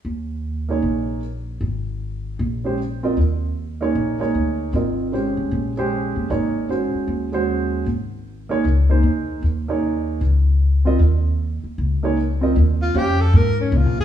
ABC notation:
X:1
M:4/4
L:1/8
Q:"Swing" 1/4=154
K:Ebmix
V:1 name="Alto saxophone"
z8 | z8 | z8 | z8 |
z8 | z8 | z8 | z8 |
z F G =A B D F _A |]
V:2 name="Grand piano"
z3 [B,EAd]3 z2 | z4 z [A,DGc] z [CFBe] | z3 [B,EAd]2 [B,EAd]3 | [CFBe]2 [A,DGc]3 [A,DGc]3 |
[B,EAd]2 [A,D_Gc]3 [A,DGc]3 | z3 [B,EAd] z [B,EAc]3 | z [B,EAd]3 z3 [CFBe] | z4 z [B,EAd] z [CFBe] |
z2 [DGcf] z4 z |]
V:3 name="Upright bass" clef=bass
E,,4 B,,,4 | A,,,4 B,,,4 | E,,4 B,,,2 =D,,2 | A,,,3 =D,, B,,,3 G,,, |
A,,,3 z E,,4 | A,,,4 D,,2 E,,2 | E,,4 D,,4 | E,,3 z D,,4 |
E,,2 F,,2 A,,2 (3D,, B,,, A,,, |]